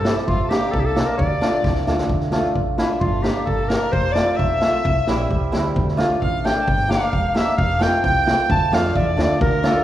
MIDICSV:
0, 0, Header, 1, 6, 480
1, 0, Start_track
1, 0, Key_signature, -1, "minor"
1, 0, Tempo, 456274
1, 294, Time_signature, 2, 2, 24, 8
1, 10351, End_track
2, 0, Start_track
2, 0, Title_t, "Violin"
2, 0, Program_c, 0, 40
2, 0, Note_on_c, 0, 69, 73
2, 179, Note_off_c, 0, 69, 0
2, 299, Note_on_c, 0, 65, 73
2, 464, Note_off_c, 0, 65, 0
2, 483, Note_on_c, 0, 69, 51
2, 550, Note_on_c, 0, 67, 77
2, 566, Note_off_c, 0, 69, 0
2, 773, Note_on_c, 0, 69, 86
2, 789, Note_off_c, 0, 67, 0
2, 903, Note_off_c, 0, 69, 0
2, 909, Note_on_c, 0, 69, 65
2, 1256, Note_on_c, 0, 74, 71
2, 1272, Note_off_c, 0, 69, 0
2, 1975, Note_off_c, 0, 74, 0
2, 2936, Note_on_c, 0, 64, 61
2, 3181, Note_on_c, 0, 65, 69
2, 3196, Note_off_c, 0, 64, 0
2, 3639, Note_on_c, 0, 69, 70
2, 3655, Note_off_c, 0, 65, 0
2, 3882, Note_on_c, 0, 70, 81
2, 3897, Note_off_c, 0, 69, 0
2, 4125, Note_on_c, 0, 72, 91
2, 4141, Note_off_c, 0, 70, 0
2, 4334, Note_on_c, 0, 74, 89
2, 4349, Note_off_c, 0, 72, 0
2, 4577, Note_off_c, 0, 74, 0
2, 4584, Note_on_c, 0, 76, 82
2, 5758, Note_off_c, 0, 76, 0
2, 6536, Note_on_c, 0, 77, 80
2, 6759, Note_off_c, 0, 77, 0
2, 6796, Note_on_c, 0, 79, 79
2, 6954, Note_off_c, 0, 79, 0
2, 6962, Note_on_c, 0, 81, 52
2, 7038, Note_on_c, 0, 79, 88
2, 7053, Note_off_c, 0, 81, 0
2, 7270, Note_on_c, 0, 77, 81
2, 7285, Note_off_c, 0, 79, 0
2, 7743, Note_off_c, 0, 77, 0
2, 7751, Note_on_c, 0, 76, 81
2, 7967, Note_off_c, 0, 76, 0
2, 7983, Note_on_c, 0, 77, 87
2, 8217, Note_on_c, 0, 79, 85
2, 8232, Note_off_c, 0, 77, 0
2, 8438, Note_off_c, 0, 79, 0
2, 8444, Note_on_c, 0, 79, 90
2, 8943, Note_on_c, 0, 81, 81
2, 8959, Note_off_c, 0, 79, 0
2, 9168, Note_on_c, 0, 77, 82
2, 9184, Note_off_c, 0, 81, 0
2, 9404, Note_on_c, 0, 74, 63
2, 9420, Note_off_c, 0, 77, 0
2, 9462, Note_on_c, 0, 76, 62
2, 9478, Note_off_c, 0, 74, 0
2, 9532, Note_on_c, 0, 74, 70
2, 9548, Note_off_c, 0, 76, 0
2, 9874, Note_off_c, 0, 74, 0
2, 9880, Note_on_c, 0, 70, 81
2, 10334, Note_off_c, 0, 70, 0
2, 10351, End_track
3, 0, Start_track
3, 0, Title_t, "Clarinet"
3, 0, Program_c, 1, 71
3, 0, Note_on_c, 1, 69, 85
3, 170, Note_off_c, 1, 69, 0
3, 291, Note_on_c, 1, 65, 86
3, 521, Note_on_c, 1, 67, 74
3, 537, Note_off_c, 1, 65, 0
3, 754, Note_on_c, 1, 69, 86
3, 769, Note_off_c, 1, 67, 0
3, 841, Note_on_c, 1, 67, 81
3, 857, Note_off_c, 1, 69, 0
3, 903, Note_on_c, 1, 69, 79
3, 919, Note_off_c, 1, 67, 0
3, 1111, Note_on_c, 1, 70, 73
3, 1127, Note_off_c, 1, 69, 0
3, 1226, Note_off_c, 1, 70, 0
3, 1232, Note_on_c, 1, 74, 93
3, 1921, Note_off_c, 1, 74, 0
3, 2929, Note_on_c, 1, 64, 81
3, 3038, Note_off_c, 1, 64, 0
3, 3156, Note_on_c, 1, 65, 85
3, 3394, Note_on_c, 1, 67, 67
3, 3410, Note_off_c, 1, 65, 0
3, 3637, Note_on_c, 1, 69, 83
3, 3653, Note_off_c, 1, 67, 0
3, 3873, Note_on_c, 1, 70, 83
3, 3889, Note_off_c, 1, 69, 0
3, 4123, Note_on_c, 1, 72, 96
3, 4139, Note_off_c, 1, 70, 0
3, 4349, Note_on_c, 1, 74, 85
3, 4365, Note_off_c, 1, 72, 0
3, 4599, Note_on_c, 1, 76, 102
3, 4614, Note_off_c, 1, 74, 0
3, 5808, Note_off_c, 1, 76, 0
3, 6556, Note_on_c, 1, 77, 83
3, 6790, Note_on_c, 1, 79, 100
3, 6806, Note_off_c, 1, 77, 0
3, 7265, Note_on_c, 1, 77, 85
3, 7281, Note_off_c, 1, 79, 0
3, 7746, Note_on_c, 1, 76, 101
3, 7762, Note_off_c, 1, 77, 0
3, 7960, Note_off_c, 1, 76, 0
3, 7966, Note_on_c, 1, 77, 96
3, 8233, Note_on_c, 1, 79, 86
3, 8249, Note_off_c, 1, 77, 0
3, 8461, Note_off_c, 1, 79, 0
3, 8467, Note_on_c, 1, 79, 113
3, 8908, Note_off_c, 1, 79, 0
3, 8957, Note_on_c, 1, 81, 107
3, 9202, Note_on_c, 1, 77, 86
3, 9217, Note_off_c, 1, 81, 0
3, 9434, Note_on_c, 1, 74, 81
3, 9450, Note_off_c, 1, 77, 0
3, 9898, Note_off_c, 1, 74, 0
3, 9904, Note_on_c, 1, 70, 92
3, 10157, Note_on_c, 1, 69, 79
3, 10173, Note_off_c, 1, 70, 0
3, 10351, Note_off_c, 1, 69, 0
3, 10351, End_track
4, 0, Start_track
4, 0, Title_t, "Hammered dulcimer"
4, 0, Program_c, 2, 15
4, 52, Note_on_c, 2, 60, 58
4, 60, Note_on_c, 2, 64, 57
4, 67, Note_on_c, 2, 67, 71
4, 173, Note_off_c, 2, 60, 0
4, 177, Note_off_c, 2, 64, 0
4, 180, Note_off_c, 2, 67, 0
4, 531, Note_on_c, 2, 62, 65
4, 532, Note_on_c, 2, 58, 66
4, 541, Note_on_c, 2, 67, 73
4, 652, Note_off_c, 2, 62, 0
4, 653, Note_off_c, 2, 58, 0
4, 657, Note_off_c, 2, 67, 0
4, 1009, Note_on_c, 2, 58, 57
4, 1017, Note_on_c, 2, 62, 64
4, 1018, Note_on_c, 2, 67, 64
4, 1131, Note_off_c, 2, 58, 0
4, 1135, Note_off_c, 2, 62, 0
4, 1136, Note_off_c, 2, 67, 0
4, 1485, Note_on_c, 2, 57, 67
4, 1486, Note_on_c, 2, 62, 62
4, 1497, Note_on_c, 2, 65, 78
4, 1609, Note_off_c, 2, 57, 0
4, 1609, Note_off_c, 2, 62, 0
4, 1615, Note_off_c, 2, 65, 0
4, 1968, Note_on_c, 2, 57, 66
4, 1974, Note_on_c, 2, 62, 61
4, 1981, Note_on_c, 2, 65, 72
4, 2091, Note_off_c, 2, 57, 0
4, 2094, Note_off_c, 2, 62, 0
4, 2097, Note_off_c, 2, 65, 0
4, 2440, Note_on_c, 2, 57, 77
4, 2444, Note_on_c, 2, 62, 60
4, 2450, Note_on_c, 2, 65, 82
4, 2567, Note_off_c, 2, 57, 0
4, 2569, Note_off_c, 2, 62, 0
4, 2572, Note_off_c, 2, 65, 0
4, 2922, Note_on_c, 2, 57, 48
4, 2928, Note_on_c, 2, 62, 51
4, 2933, Note_on_c, 2, 65, 66
4, 3048, Note_off_c, 2, 57, 0
4, 3051, Note_off_c, 2, 62, 0
4, 3054, Note_off_c, 2, 65, 0
4, 3401, Note_on_c, 2, 58, 60
4, 3409, Note_on_c, 2, 62, 56
4, 3413, Note_on_c, 2, 67, 72
4, 3528, Note_off_c, 2, 58, 0
4, 3532, Note_off_c, 2, 62, 0
4, 3534, Note_off_c, 2, 67, 0
4, 3887, Note_on_c, 2, 58, 62
4, 3894, Note_on_c, 2, 62, 51
4, 3898, Note_on_c, 2, 67, 63
4, 4011, Note_off_c, 2, 58, 0
4, 4015, Note_off_c, 2, 62, 0
4, 4016, Note_off_c, 2, 67, 0
4, 4373, Note_on_c, 2, 57, 65
4, 4381, Note_on_c, 2, 60, 58
4, 4388, Note_on_c, 2, 65, 78
4, 4494, Note_off_c, 2, 57, 0
4, 4498, Note_off_c, 2, 60, 0
4, 4502, Note_off_c, 2, 65, 0
4, 4851, Note_on_c, 2, 57, 63
4, 4856, Note_on_c, 2, 60, 49
4, 4856, Note_on_c, 2, 65, 73
4, 4973, Note_off_c, 2, 57, 0
4, 4975, Note_off_c, 2, 65, 0
4, 4976, Note_off_c, 2, 60, 0
4, 5347, Note_on_c, 2, 55, 84
4, 5351, Note_on_c, 2, 60, 72
4, 5354, Note_on_c, 2, 64, 79
4, 5463, Note_off_c, 2, 60, 0
4, 5465, Note_off_c, 2, 64, 0
4, 5793, Note_off_c, 2, 55, 0
4, 5806, Note_on_c, 2, 55, 68
4, 5812, Note_on_c, 2, 60, 65
4, 5813, Note_on_c, 2, 64, 81
4, 5934, Note_off_c, 2, 60, 0
4, 5934, Note_off_c, 2, 64, 0
4, 6108, Note_off_c, 2, 55, 0
4, 6282, Note_on_c, 2, 57, 83
4, 6283, Note_on_c, 2, 62, 64
4, 6294, Note_on_c, 2, 65, 92
4, 6409, Note_off_c, 2, 57, 0
4, 6409, Note_off_c, 2, 62, 0
4, 6415, Note_off_c, 2, 65, 0
4, 6777, Note_on_c, 2, 57, 66
4, 6781, Note_on_c, 2, 62, 57
4, 6790, Note_on_c, 2, 67, 59
4, 6896, Note_off_c, 2, 57, 0
4, 6898, Note_off_c, 2, 62, 0
4, 6903, Note_off_c, 2, 67, 0
4, 7243, Note_on_c, 2, 58, 66
4, 7249, Note_on_c, 2, 67, 68
4, 7252, Note_on_c, 2, 62, 64
4, 7370, Note_off_c, 2, 58, 0
4, 7373, Note_off_c, 2, 67, 0
4, 7374, Note_off_c, 2, 62, 0
4, 7722, Note_on_c, 2, 58, 62
4, 7726, Note_on_c, 2, 62, 55
4, 7730, Note_on_c, 2, 67, 67
4, 7849, Note_off_c, 2, 58, 0
4, 7851, Note_off_c, 2, 62, 0
4, 7853, Note_off_c, 2, 67, 0
4, 8196, Note_on_c, 2, 57, 70
4, 8201, Note_on_c, 2, 60, 68
4, 8209, Note_on_c, 2, 65, 75
4, 8326, Note_off_c, 2, 57, 0
4, 8328, Note_off_c, 2, 60, 0
4, 8333, Note_off_c, 2, 65, 0
4, 8692, Note_on_c, 2, 57, 58
4, 8692, Note_on_c, 2, 60, 56
4, 8702, Note_on_c, 2, 65, 69
4, 8814, Note_off_c, 2, 57, 0
4, 8814, Note_off_c, 2, 60, 0
4, 8818, Note_off_c, 2, 65, 0
4, 9179, Note_on_c, 2, 62, 66
4, 9180, Note_on_c, 2, 57, 71
4, 9190, Note_on_c, 2, 65, 88
4, 9297, Note_off_c, 2, 62, 0
4, 9298, Note_off_c, 2, 57, 0
4, 9302, Note_off_c, 2, 65, 0
4, 9645, Note_on_c, 2, 57, 68
4, 9651, Note_on_c, 2, 62, 57
4, 9661, Note_on_c, 2, 65, 70
4, 9770, Note_off_c, 2, 57, 0
4, 9773, Note_off_c, 2, 62, 0
4, 9778, Note_off_c, 2, 65, 0
4, 10135, Note_on_c, 2, 57, 69
4, 10135, Note_on_c, 2, 62, 66
4, 10141, Note_on_c, 2, 65, 84
4, 10255, Note_off_c, 2, 57, 0
4, 10255, Note_off_c, 2, 62, 0
4, 10258, Note_off_c, 2, 65, 0
4, 10351, End_track
5, 0, Start_track
5, 0, Title_t, "Fretless electric bass"
5, 0, Program_c, 3, 35
5, 294, Note_on_c, 3, 31, 109
5, 438, Note_off_c, 3, 31, 0
5, 774, Note_on_c, 3, 36, 86
5, 1062, Note_off_c, 3, 36, 0
5, 1252, Note_on_c, 3, 38, 108
5, 1396, Note_off_c, 3, 38, 0
5, 1727, Note_on_c, 3, 36, 75
5, 1946, Note_off_c, 3, 36, 0
5, 1970, Note_on_c, 3, 38, 80
5, 2187, Note_off_c, 3, 38, 0
5, 2200, Note_on_c, 3, 38, 90
5, 2492, Note_off_c, 3, 38, 0
5, 2686, Note_on_c, 3, 33, 64
5, 2977, Note_off_c, 3, 33, 0
5, 3166, Note_on_c, 3, 31, 99
5, 3457, Note_off_c, 3, 31, 0
5, 3651, Note_on_c, 3, 31, 67
5, 3941, Note_off_c, 3, 31, 0
5, 4131, Note_on_c, 3, 29, 112
5, 4420, Note_off_c, 3, 29, 0
5, 4623, Note_on_c, 3, 35, 71
5, 4909, Note_off_c, 3, 35, 0
5, 5105, Note_on_c, 3, 36, 120
5, 5247, Note_off_c, 3, 36, 0
5, 5341, Note_on_c, 3, 34, 82
5, 5555, Note_off_c, 3, 34, 0
5, 5582, Note_on_c, 3, 36, 71
5, 5796, Note_off_c, 3, 36, 0
5, 5830, Note_on_c, 3, 38, 79
5, 6040, Note_off_c, 3, 38, 0
5, 6060, Note_on_c, 3, 38, 107
5, 6347, Note_off_c, 3, 38, 0
5, 6549, Note_on_c, 3, 33, 78
5, 6833, Note_off_c, 3, 33, 0
5, 7026, Note_on_c, 3, 31, 109
5, 7311, Note_off_c, 3, 31, 0
5, 7500, Note_on_c, 3, 28, 78
5, 7787, Note_off_c, 3, 28, 0
5, 7976, Note_on_c, 3, 29, 107
5, 8264, Note_off_c, 3, 29, 0
5, 8458, Note_on_c, 3, 36, 88
5, 8745, Note_off_c, 3, 36, 0
5, 8940, Note_on_c, 3, 38, 109
5, 9082, Note_off_c, 3, 38, 0
5, 9170, Note_on_c, 3, 41, 89
5, 9388, Note_off_c, 3, 41, 0
5, 9427, Note_on_c, 3, 40, 76
5, 9637, Note_off_c, 3, 40, 0
5, 9652, Note_on_c, 3, 38, 85
5, 9870, Note_off_c, 3, 38, 0
5, 9899, Note_on_c, 3, 38, 127
5, 10186, Note_off_c, 3, 38, 0
5, 10351, End_track
6, 0, Start_track
6, 0, Title_t, "Drums"
6, 49, Note_on_c, 9, 38, 93
6, 154, Note_off_c, 9, 38, 0
6, 183, Note_on_c, 9, 38, 31
6, 288, Note_off_c, 9, 38, 0
6, 293, Note_on_c, 9, 36, 68
6, 398, Note_off_c, 9, 36, 0
6, 532, Note_on_c, 9, 38, 79
6, 637, Note_off_c, 9, 38, 0
6, 773, Note_on_c, 9, 36, 67
6, 878, Note_off_c, 9, 36, 0
6, 1011, Note_on_c, 9, 38, 87
6, 1117, Note_off_c, 9, 38, 0
6, 1251, Note_on_c, 9, 36, 64
6, 1356, Note_off_c, 9, 36, 0
6, 1490, Note_on_c, 9, 38, 75
6, 1595, Note_off_c, 9, 38, 0
6, 1729, Note_on_c, 9, 36, 72
6, 1729, Note_on_c, 9, 38, 48
6, 1834, Note_off_c, 9, 36, 0
6, 1834, Note_off_c, 9, 38, 0
6, 1838, Note_on_c, 9, 38, 43
6, 1943, Note_off_c, 9, 38, 0
6, 1967, Note_on_c, 9, 38, 67
6, 2073, Note_off_c, 9, 38, 0
6, 2084, Note_on_c, 9, 38, 71
6, 2189, Note_off_c, 9, 38, 0
6, 2204, Note_on_c, 9, 36, 61
6, 2310, Note_off_c, 9, 36, 0
6, 2317, Note_on_c, 9, 38, 27
6, 2422, Note_off_c, 9, 38, 0
6, 2435, Note_on_c, 9, 38, 75
6, 2540, Note_off_c, 9, 38, 0
6, 2552, Note_on_c, 9, 38, 27
6, 2657, Note_off_c, 9, 38, 0
6, 2688, Note_on_c, 9, 36, 63
6, 2793, Note_off_c, 9, 36, 0
6, 2924, Note_on_c, 9, 38, 82
6, 3029, Note_off_c, 9, 38, 0
6, 3171, Note_on_c, 9, 36, 72
6, 3276, Note_off_c, 9, 36, 0
6, 3407, Note_on_c, 9, 38, 80
6, 3512, Note_off_c, 9, 38, 0
6, 3653, Note_on_c, 9, 36, 61
6, 3758, Note_off_c, 9, 36, 0
6, 3890, Note_on_c, 9, 38, 93
6, 3996, Note_off_c, 9, 38, 0
6, 4136, Note_on_c, 9, 36, 69
6, 4241, Note_off_c, 9, 36, 0
6, 4368, Note_on_c, 9, 38, 83
6, 4473, Note_off_c, 9, 38, 0
6, 4622, Note_on_c, 9, 36, 74
6, 4727, Note_off_c, 9, 36, 0
6, 4853, Note_on_c, 9, 38, 81
6, 4958, Note_off_c, 9, 38, 0
6, 5103, Note_on_c, 9, 36, 73
6, 5208, Note_off_c, 9, 36, 0
6, 5335, Note_on_c, 9, 38, 81
6, 5441, Note_off_c, 9, 38, 0
6, 5582, Note_on_c, 9, 36, 68
6, 5687, Note_off_c, 9, 36, 0
6, 5815, Note_on_c, 9, 38, 81
6, 5921, Note_off_c, 9, 38, 0
6, 6060, Note_on_c, 9, 36, 71
6, 6166, Note_off_c, 9, 36, 0
6, 6187, Note_on_c, 9, 38, 27
6, 6292, Note_off_c, 9, 38, 0
6, 6298, Note_on_c, 9, 38, 79
6, 6403, Note_off_c, 9, 38, 0
6, 6544, Note_on_c, 9, 36, 63
6, 6649, Note_off_c, 9, 36, 0
6, 6788, Note_on_c, 9, 38, 75
6, 6894, Note_off_c, 9, 38, 0
6, 7023, Note_on_c, 9, 36, 70
6, 7128, Note_off_c, 9, 36, 0
6, 7263, Note_on_c, 9, 38, 84
6, 7369, Note_off_c, 9, 38, 0
6, 7379, Note_on_c, 9, 38, 27
6, 7484, Note_off_c, 9, 38, 0
6, 7501, Note_on_c, 9, 36, 72
6, 7606, Note_off_c, 9, 36, 0
6, 7737, Note_on_c, 9, 38, 87
6, 7842, Note_off_c, 9, 38, 0
6, 7980, Note_on_c, 9, 36, 70
6, 8085, Note_off_c, 9, 36, 0
6, 8216, Note_on_c, 9, 38, 92
6, 8321, Note_off_c, 9, 38, 0
6, 8458, Note_on_c, 9, 36, 69
6, 8563, Note_off_c, 9, 36, 0
6, 8702, Note_on_c, 9, 38, 96
6, 8807, Note_off_c, 9, 38, 0
6, 8939, Note_on_c, 9, 36, 84
6, 9044, Note_off_c, 9, 36, 0
6, 9182, Note_on_c, 9, 38, 93
6, 9287, Note_off_c, 9, 38, 0
6, 9314, Note_on_c, 9, 38, 31
6, 9419, Note_off_c, 9, 38, 0
6, 9421, Note_on_c, 9, 36, 77
6, 9526, Note_off_c, 9, 36, 0
6, 9664, Note_on_c, 9, 38, 83
6, 9769, Note_off_c, 9, 38, 0
6, 9900, Note_on_c, 9, 36, 81
6, 10006, Note_off_c, 9, 36, 0
6, 10136, Note_on_c, 9, 38, 81
6, 10241, Note_off_c, 9, 38, 0
6, 10351, End_track
0, 0, End_of_file